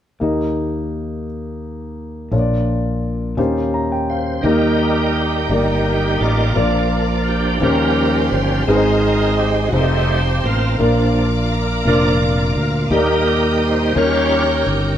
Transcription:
0.20 2.29 D#2 soft
0.20 1.24 D#3 soft
0.20 2.28 A#3 soft
0.20 2.29 D#4 soft
0.20 2.29 G4 soft
0.20 2.30 A#4 soft
0.20 2.30 D#5 soft
2.31 3.34 A#1 soft
2.31 3.34 A#2 soft
2.31 3.38 A#3 soft
2.31 3.38 D4 soft
2.31 3.36 F4 soft
2.31 3.39 A#4 soft
2.31 2.39 C#5 soft
2.39 3.42 D5 medium
3.37 4.40 D#2 medium
3.37 4.40 D#3 medium
3.37 4.44 C#4 medium
3.37 4.43 D#4 soft
3.37 4.44 F4 soft
3.37 4.44 G4 medium
3.37 4.45 C5 medium
3.74 3.90 A#5 medium
3.92 4.08 G5 medium
4.10 4.46 C5 medium
4.10 4.43 F5 soft
4.41 5.46 D#2 medium
4.41 6.50 G3 soft
4.41 5.49 A#3 soft
4.41 5.44 A#3 medium
4.41 5.49 D#4 soft
4.41 6.53 D#4 soft
4.41 5.44 D#4 medium
4.41 5.13 G4 soft
4.41 5.17 A#4 medium
4.41 7.58 A#4 medium
4.41 6.53 G5 soft
4.41 7.58 A#5 medium
4.45 5.47 D#3 soft
4.45 5.44 G4 soft
4.45 5.44 A#4 soft
4.45 5.45 D#5 medium
5.14 5.50 G4 medium
5.49 6.16 G1 medium
5.49 6.19 A#3 soft
5.49 6.49 A#3 soft
5.49 6.49 D#4 soft
5.49 6.52 D#4 soft
5.49 6.23 G4 medium
5.49 6.50 G4 soft
5.49 6.50 A#4 soft
5.49 6.50 D5 medium
6.20 6.53 A1 medium
6.20 6.54 A#3 soft
6.20 7.30 F4 medium
6.20 7.23 D5 soft
6.54 7.58 A#1 medium
6.54 7.58 A#2 medium
6.54 7.57 F3 soft
6.54 7.55 A#3 medium
6.54 7.57 A#3 soft
6.54 7.55 D4 medium
6.54 7.58 D4 medium
6.54 7.55 F4 medium
6.54 7.55 A#4 medium
6.54 7.60 D5 soft
6.54 7.56 D5 medium
6.54 8.65 F5 soft
7.27 7.61 G4 medium
7.60 8.28 D#2 medium
7.60 8.64 D#3 medium
7.60 8.63 F3 soft
7.60 8.64 G3 soft
7.60 8.64 A#3 soft
7.60 8.60 C#4 medium
7.60 8.66 C#4 medium
7.60 8.64 C#4 soft
7.60 8.61 D#4 medium
7.60 8.61 F4 soft
7.60 8.64 G4 medium
7.60 8.61 G4 soft
7.60 8.28 A#4 medium
7.60 8.62 C5 medium
7.60 8.66 G5 medium
7.60 9.71 C6 medium
8.27 8.33 B4 medium
8.32 8.64 G1 medium
8.32 8.48 C5 medium
8.67 9.69 G#1 medium
8.67 9.70 G#2 soft
8.67 9.69 G#3 soft
8.67 9.67 G#3 medium
8.67 9.69 C4 soft
8.67 9.67 C4 medium
8.67 9.70 D#4 soft
8.67 9.67 D#4 medium
8.67 9.67 G#4 medium
8.67 9.35 A#4 medium
8.67 8.75 B4 medium
8.67 9.72 C5 medium
8.67 10.77 D#5 medium
8.67 9.72 G#5 medium
8.75 9.71 C5 medium
9.39 9.67 G4 medium
9.68 10.72 C4 soft
9.68 9.74 F#4 medium
9.72 10.39 F1 medium
9.72 10.20 G3 soft
9.72 10.21 A3 soft
9.72 10.76 C4 medium
9.72 10.72 D#4 soft
9.72 10.21 D#4 medium
9.72 10.72 F4 soft
9.72 10.47 G4 medium
9.72 9.80 G#4 soft
9.72 10.73 C5 medium
9.72 12.87 F5 soft
9.72 10.78 A5 medium
9.72 10.78 C6 medium
9.79 10.76 A4 soft
10.44 10.76 A1 medium
10.44 10.81 A#3 medium
10.44 11.53 F4 medium
10.79 11.81 A#1 medium
10.79 11.81 A#2 soft
10.79 11.27 F3 soft
10.79 11.78 A#3 medium
10.79 11.28 A#3 soft
10.79 11.78 D4 medium
10.79 11.78 F4 medium
10.79 11.79 A#4 medium
10.79 12.88 D5 medium
10.79 11.79 D5 medium
10.79 12.89 A#5 medium
10.79 12.89 D6 medium
10.83 11.28 D4 soft
11.52 11.86 A#4 medium
11.85 12.52 F1 medium
11.85 12.17 F3 soft
11.85 12.84 A#3 soft
11.85 12.18 A#3 soft
11.85 12.85 D4 soft
11.85 12.18 D4 soft
11.85 12.85 F4 soft
11.85 12.88 F4 medium
11.85 12.85 A#4 soft
11.85 12.56 A#4 medium
11.85 12.85 D5 medium
11.85 12.53 D5 medium
12.55 12.88 D2 medium
12.55 12.72 A#4 medium
12.89 13.92 D#2 medium
12.89 13.93 D#3 soft
12.89 13.93 G3 soft
12.89 13.90 A#3 medium
12.89 13.93 A#3 soft
12.89 13.90 D#4 soft
12.89 13.93 D#4 medium
12.89 13.90 G4 soft
12.89 13.93 G4 medium
12.89 13.64 A#4 medium
12.89 13.91 A#4 medium
12.89 12.98 D5 medium
12.89 13.95 D#5 medium
12.89 13.95 G5 soft
12.89 14.98 A#5 medium
12.89 13.95 D#6 medium
12.99 13.94 D#5 medium
13.63 13.99 C5 medium
13.95 14.63 D#2 medium
13.95 14.98 D#3 medium
13.95 14.43 G3 soft
13.95 14.95 C#4 medium
13.95 14.44 C#4 soft
13.95 14.95 D#4 soft
13.95 14.44 F4 soft
13.95 14.96 G4 soft
13.95 14.98 G4 medium
13.95 14.96 A#4 soft
13.95 14.68 A#4 medium
13.95 14.96 C#5 medium
13.95 14.70 C#5 medium
13.95 14.98 D#5 medium
13.95 14.98 G5 medium
13.95 14.98 C#6 medium
14.66 14.98 G1 medium
14.66 14.98 A#4 medium

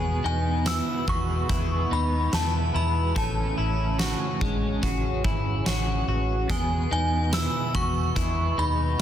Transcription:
0.00 0.19 E2 loud
0.00 1.07 E2 medium
0.00 1.08 B2 medium
0.00 3.13 B2 medium
0.00 1.11 E3 medium
0.00 1.09 G#3 medium
0.00 1.07 B3 medium
0.00 3.12 B3 medium
0.00 0.24 G#4 medium
0.00 1.07 G#4 medium
0.00 0.25 G#5 medium
0.24 0.79 E2 loud
0.24 0.66 D#4 medium
0.24 0.68 G#5 medium
0.66 1.07 E4 medium
0.66 1.10 E6 loud
0.66 snare loud
0.66 closed hi-hat medium
0.66 tambourine medium
1.07 1.44 E2 loud
1.07 1.51 D#3 soft
1.07 1.49 G#3 soft
1.07 1.50 B3 soft
1.07 1.49 F#4 medium
1.07 1.49 G#4 soft
1.07 1.94 C#6 loud
1.07 kick loud
1.49 1.86 E2 loud
1.49 2.33 G#3 medium
1.49 2.33 B3 medium
1.49 1.91 E4 medium
1.49 3.18 G#4 medium
1.49 kick loud
1.49 closed hi-hat medium
1.91 2.28 D#2 medium
1.91 2.33 D#4 medium
1.91 2.31 B5 medium
2.33 2.69 E2 loud
2.33 3.18 G#3 medium
2.33 2.73 E4 medium
2.33 2.76 A5 medium
2.33 snare loud
2.33 closed hi-hat medium
2.33 tambourine medium
2.75 3.11 E2 loud
2.75 3.15 E4 medium
2.75 3.14 B5 medium
3.15 3.53 A1 loud
3.15 4.41 A2 medium
3.15 6.46 C#3 medium
3.15 4.81 E3 medium
3.15 6.46 C#4 medium
3.15 4.41 C#4 medium
3.15 3.57 A4 medium
3.15 4.79 A5 medium
3.15 kick loud
3.15 closed hi-hat medium
3.58 4.13 A1 loud
3.58 3.99 E4 medium
3.99 4.41 F#4 medium
3.99 snare loud
3.99 closed hi-hat medium
3.99 tambourine medium
4.41 4.78 A1 loud
4.41 4.83 G#3 medium
4.41 4.82 G#3 soft
4.41 4.83 C#4 medium
4.41 kick loud
4.82 5.19 A1 medium
4.82 5.64 E3 medium
4.82 5.66 G#3 medium
4.82 5.66 C#4 medium
4.82 5.24 F#4 medium
4.82 5.68 G#4 medium
4.82 kick medium
4.82 closed hi-hat medium
5.24 5.61 G#1 medium
5.24 5.66 E4 medium
5.24 kick loud
5.65 6.03 A1 loud
5.65 9.02 E3 medium
5.65 6.51 G#3 medium
5.65 6.50 C#4 medium
5.65 6.07 F#4 medium
5.65 6.54 G#4 medium
5.65 snare loud
5.65 closed hi-hat medium
5.65 tambourine medium
6.08 6.44 A1 loud
6.08 6.49 F#4 medium
6.48 8.15 E2 medium
6.48 6.86 E2 medium
6.48 9.02 B2 medium
6.48 8.16 B2 medium
6.48 8.16 G#3 medium
6.48 9.02 B3 medium
6.48 6.91 G#4 medium
6.48 6.91 G#5 medium
6.48 kick loud
6.48 closed hi-hat medium
6.53 8.17 B3 medium
6.53 8.19 G#4 medium
6.91 7.46 E2 loud
6.91 7.33 D#4 medium
6.91 7.35 G#5 medium
7.33 7.74 E4 medium
7.33 7.76 E6 medium
7.33 snare loud
7.33 closed hi-hat medium
7.33 tambourine medium
7.75 8.11 E2 loud
7.75 8.16 F#4 medium
7.75 8.61 C#6 loud
7.75 kick medium
8.16 8.53 E2 loud
8.16 8.99 G#3 medium
8.16 9.00 B3 medium
8.16 8.58 E4 medium
8.16 9.02 G#4 medium
8.16 kick medium
8.16 closed hi-hat medium
8.58 8.94 D#2 medium
8.58 8.99 D#4 medium
8.58 9.01 B5 medium

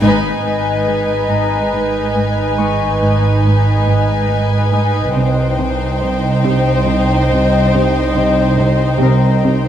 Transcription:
0.00 5.12 G#1 soft
0.00 5.12 G#2 soft
0.00 0.28 G#2 medium
0.00 5.12 D#4 soft
0.00 2.62 B4 soft
0.00 5.12 B4 medium
0.00 5.12 B4 soft
0.00 5.12 D#5 medium
0.00 5.12 G#5 soft
0.00 5.12 G#5 medium
0.46 0.71 G#2 soft
0.88 1.13 G#2 soft
1.29 1.56 G#2 soft
1.29 5.19 A#5 soft
1.73 1.99 G#2 soft
2.16 2.41 G#2 soft
2.58 2.84 G#2 soft
2.58 5.19 C#6 soft
3.02 3.27 G#2 soft
3.44 3.70 G#2 soft
3.87 4.13 G#2 soft
4.30 4.56 G#2 soft
4.73 4.99 G#2 soft
4.73 8.63 D#6 soft
5.15 9.68 C2 soft
5.15 5.42 C3 soft
5.15 9.68 D#4 soft
5.15 9.68 C5 soft
5.15 9.68 D#5 medium
5.15 9.68 G5 soft
5.15 9.68 G5 medium
5.59 5.85 C3 soft
6.02 6.27 C3 soft
6.45 6.70 C3 soft
6.88 7.13 C3 soft
7.30 7.56 C3 soft
7.74 7.99 C3 medium
8.16 8.42 C3 soft
8.59 8.84 C3 soft
9.01 9.27 C3 medium
9.01 9.68 A#4 soft
9.44 9.68 C3 soft

